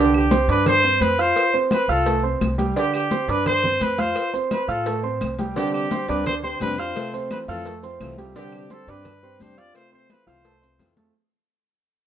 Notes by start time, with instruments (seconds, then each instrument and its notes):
Already playing: upright bass C2, grand piano D3 D4 D5, trumpet G4
0.14 trumpet G4, high conga, claves
0.31 grand piano C4 C5 C6, cowbell, high conga, maracas
0.48 upright bass G2, grand piano D4 D5 D6, trumpet B4, cowbell, high conga, maracas
0.66 trumpet C5, cowbell, high conga, low conga, claves, maracas
0.84 grand piano C4 C5 C6, high conga
1.00 upright bass F2, trumpet B4, cowbell, high conga, maracas
1.19 grand piano F4 F5 F6, trumpet C5, cowbell, maracas
1.36 cowbell, high conga, claves, maracas
1.54 grand piano C4 C5 C6, high conga
1.71 trumpet B4, cowbell, high conga, claves, maracas
1.88 upright bass C2, grand piano F4 F5 F6, trumpet A4, high conga, maracas
2.06 grand piano A3 A4 A5, cowbell, high conga, maracas
2.23 grand piano C4 C5 C6, high conga
2.41 upright bass C2, cowbell, high conga, claves, maracas
2.58 grand piano G3 G4 G5, cowbell, high conga, maracas
2.76 grand piano D3 D4 D5, trumpet G4, cowbell, maracas
2.94 trumpet G4, high conga, claves, maracas
3.11 grand piano C4 C5 C6, cowbell, high conga, maracas
3.28 upright bass G2, grand piano D4 D5 D6, trumpet B4, cowbell, high conga, maracas
3.46 trumpet C5, cowbell, high conga, low conga, claves, maracas
3.63 grand piano C4 C5 C6, high conga, low conga
3.80 upright bass F2, trumpet B4, cowbell, high conga, maracas
3.98 grand piano F4 F5 F6, trumpet C5, cowbell, high conga, maracas
4.16 cowbell, high conga, claves, maracas
4.33 grand piano C4 C5 C6, high conga, maracas
4.51 trumpet B4, cowbell, high conga, claves, maracas
4.68 upright bass A2, grand piano F4 F5 F6, trumpet A4, high conga, maracas
4.86 grand piano A3 A4 A5, cowbell, high conga, maracas
5.03 grand piano C4 C5 C6, high conga
5.21 upright bass C2, cowbell, high conga, claves, maracas
5.39 grand piano G3 G4 G5, cowbell, high conga, maracas
5.56 steel-string acoustic guitar C3 G3 C4 D4 G4, grand piano D3 D4 D5, trumpet G4, cowbell, high conga, maracas
5.73 trumpet G4, high conga, claves
5.91 steel-string acoustic guitar G3 C4 D4 G4, grand piano C4 C5 C6, cowbell, high conga, maracas
6.08 upright bass D2, steel-string acoustic guitar G3 C4 D4 G4, grand piano D4 D5 D6, trumpet B4, cowbell, high conga, maracas
6.26 trumpet C5, muted steel-string acoustic guitar stroke, cowbell, high conga, low conga, claves, maracas
6.43 grand piano C4 C5 C6, steel-string acoustic guitar C4 D4 G4, trumpet C5, high conga
6.60 upright bass F2, steel-string acoustic guitar C3 G3 C4 D4 G4, trumpet B4, cowbell, high conga, maracas
6.78 steel-string acoustic guitar C4 G4, grand piano F4 F5 F6, trumpet C5, cowbell, maracas
6.96 steel-string acoustic guitar C3 A3 C4 F4, cowbell, high conga, claves, maracas
7.14 grand piano C4 C5 C6, high conga, maracas
7.31 steel-string acoustic guitar E3 A3 C4 F4, trumpet B4, cowbell, high conga, claves, maracas
7.48 upright bass F2, steel-string acoustic guitar E3 A3 C4 F4, grand piano F4 F5 F6, trumpet A4, high conga, maracas
7.65 grand piano A3 A4 A5, muted steel-string acoustic guitar stroke, cowbell, high conga, maracas
7.83 steel-string acoustic guitar A3 C4 F4, grand piano C4 C5 C6, high conga, maracas
8.00 upright bass C2, steel-string acoustic guitar C3 E3 A3 C4 F4, cowbell, high conga, claves, maracas
8.18 grand piano G3 G4 G5, steel-string acoustic guitar A3 C4 F4, cowbell, high conga, maracas
8.35 steel-string acoustic guitar C3 G3 C4 D4 G4, grand piano D3 D4 D5, trumpet G4, cowbell, high conga, maracas
8.52 trumpet G4, high conga, claves
8.70 steel-string acoustic guitar G3 D4 G4, grand piano C4 C5 C6, trumpet A4, cowbell, high conga, maracas
8.87 upright bass G2, steel-string acoustic guitar G3 C4 D4 G4, grand piano D4 D5 D6, trumpet B4, cowbell, high conga, maracas
9.05 muted steel-string acoustic guitar stroke, cowbell, high conga, low conga, claves, maracas
9.23 grand piano C4 C5 C6, steel-string acoustic guitar C4 D4 G4, high conga
9.40 upright bass F2, steel-string acoustic guitar C3 G3 C4 D4 G4, trumpet C5, cowbell, high conga, maracas
9.57 steel-string acoustic guitar C4 D4 G4, grand piano F4 F5 F6, trumpet D5, cowbell, maracas
9.75 steel-string acoustic guitar C3 A3 C4 F4, trumpet C5, cowbell, high conga, claves, maracas
9.92 grand piano C4 C5 C6, trumpet C5, high conga
10.09 steel-string acoustic guitar E3 A3 F4, trumpet B4, cowbell, high conga, claves, maracas
10.27 upright bass C2, steel-string acoustic guitar E3 A3 C4 F4, grand piano F4 F5 F6, trumpet C5, high bongo, high conga, maracas
10.45 grand piano A3 A4 A5, muted steel-string acoustic guitar stroke, cowbell, high bongo, high conga, maracas
10.62 steel-string acoustic guitar A3 C4 F4, grand piano C4 C5 C6, high conga, maracas
10.79 upright bass F2, steel-string acoustic guitar C3 E3 A3 C4 F4, cowbell, low bongo, high conga, claves, maracas
10.97 grand piano A3 A4 A5, steel-string acoustic guitar A3 C4 F4, cowbell, low bongo, high conga, maracas